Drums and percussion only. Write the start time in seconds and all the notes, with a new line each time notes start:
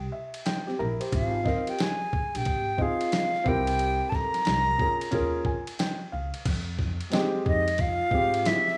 0.34 ride
0.46 snare, hi-hat pedal, ride
0.68 snare
1.01 ride
1.12 kick, ride
1.46 kick, snare
1.67 ride
1.79 snare, hi-hat pedal, ride
2.13 kick
2.35 ride
2.45 kick, ride
2.78 kick
3.01 ride
3.12 snare, hi-hat pedal, ride
3.35 snare
3.46 kick
3.67 ride
3.79 ride
4.12 kick, snare
4.34 snare, ride
4.45 snare, hi-hat pedal, ride
4.79 kick
5.01 ride
5.12 kick, ride
5.45 kick
5.67 ride
5.79 snare, hi-hat pedal, ride
6.34 ride
6.45 kick, crash, ride
6.79 kick, snare
7.01 ride
7.12 snare, hi-hat pedal, ride
7.46 kick
7.68 ride
7.78 kick, ride
8.11 kick
8.34 ride
8.45 snare, hi-hat pedal, ride
8.68 snare